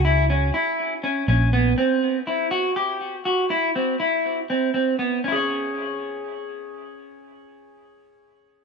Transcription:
<<
  \new Staff \with { instrumentName = "Clean electric guitar" } { \time 7/8 \key cis \dorian \tempo 4 = 122 e'8 cis'8 e'4 cis'8 cis'8 b8 | c'4 e'8 fis'8 g'4 fis'8 | e'8 c'8 e'4 c'8 c'8 b8 | <cis' e' gis' cis''>2.~ <cis' e' gis' cis''>8~ |
<cis' e' gis' cis''>2.~ <cis' e' gis' cis''>8 | }
  \new Staff \with { instrumentName = "Picked electric bass" } { \clef bass \time 7/8 \key cis \dorian cis,4 r4. ais,,4 | r2. r8 | r2. r8 | r2. r8 |
r2. r8 | }
>>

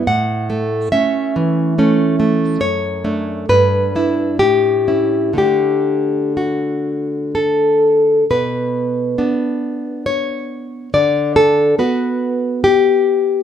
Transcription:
\new Staff \with { instrumentName = "Nylon-string guitar" } { \time 3/4 \key d \major \tempo 4 = 69 << { fis''4 e''4. r8 | cis''4 b'4 g'4 | g'4 fis'4 a'4 | \key b \minor b'2 cis''4 |
d''8 a'8 b'4 g'4 | } \\ { a,8 a8 <a cis'>8 e8 <a cis'>8 a8 | fis,8 <a d'>8 g,8 <d' e'>8 a,8 <cis' e'>8 | <d a d'>2. | b,4 <b d'>2 |
d4 <b fis'>2 | } >> }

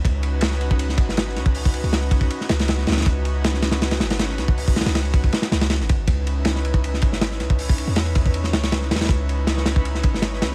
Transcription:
<<
  \new Staff \with { instrumentName = "Synth texture" } { \time 4/4 \key b \mixolydian \tempo 4 = 159 r1 | r1 | r1 | r1 |
<cis'' cis'''>1~ | <cis'' cis'''>1~ | <cis'' cis'''>1 | }
  \new Staff \with { instrumentName = "Analog synth pad" } { \time 4/4 \key b \mixolydian <cis' dis' fis' b'>2. <cis' dis' fis' b'>4 | <cis' dis' fis' b'>2. <cis' dis' fis' b'>4 | <cis' dis' fis' b'>2. <cis' dis' fis' b'>4 | <cis' dis' fis' b'>2. r4 |
<cis' dis' e' b'>2. <cis' dis' e' b'>4 | <cis' dis' e' b'>2. <cis' dis' e' b'>4 | <cis' dis' e' b'>2. <cis' dis' e' b'>4 | }
  \new Staff \with { instrumentName = "808-style bass" } { \clef bass \time 4/4 \key b \mixolydian cis,2~ cis,8 gis,,4 cis,8~ | cis,8. cis,4~ cis,16 r8 cis,4 cis,16 dis,16 | cis,2~ cis,8 gis,,4 cis,8~ | cis,8. cis,4~ cis,16 r8 cis,8. gis,,8. |
cis,2~ cis,8 gis,,4 cis,8~ | cis,8. e,4.~ e,16 cis,4 e,16 dis,16 | cis,2~ cis,8 gis,,4 cis,8 | }
  \new DrumStaff \with { instrumentName = "Drums" } \drummode { \time 4/4 <bd cymr>8 cymr8 <cymr sn>16 sn16 cymr16 bd16 cymr16 sn16 <bd cymr>16 sn16 <cymr sn>16 sn16 <cymr sn>16 bd16 | hho16 bd16 cymr16 cymr16 <cymr sn>16 cymr16 <bd cymr>16 bd16 cymr16 sn16 <cymr sn>16 <cymr sn>16 <cymr sn>16 sn16 <cymr sn>32 <cymr sn>32 <cymr sn>32 <cymr sn>32 | <bd cymr>8 cymr8 <cymr sn>16 sn16 <cymr sn>16 <cymr sn>16 <cymr sn>16 <cymr sn>16 <cymr sn>16 <cymr sn>16 <cymr sn>16 sn16 <cymr sn>16 bd16 | hho16 bd16 <cymr sn>32 <cymr sn>32 <cymr sn>16 <cymr sn>16 cymr16 <bd cymr>16 bd16 <cymr sn>16 <cymr sn>16 <cymr sn>16 <cymr sn>16 <cymr sn>16 sn16 <bd cymr>8 |
<bd cymr>8 cymr8 <cymr sn>16 sn16 cymr16 bd16 cymr16 sn16 <bd cymr>16 sn16 <cymr sn>16 sn16 <cymr sn>16 bd16 | hho16 bd16 cymr16 cymr16 <cymr sn>16 cymr16 <bd cymr>16 bd16 cymr16 sn16 <cymr sn>16 <cymr sn>16 <cymr sn>16 sn16 <cymr sn>32 <cymr sn>32 <cymr sn>32 <cymr sn>32 | <bd cymr>8 cymr8 <cymr sn>16 sn16 <cymr sn>16 bd16 cymr16 sn16 <bd cymr>16 sn16 <cymr sn>16 sn16 <cymr sn>8 | }
>>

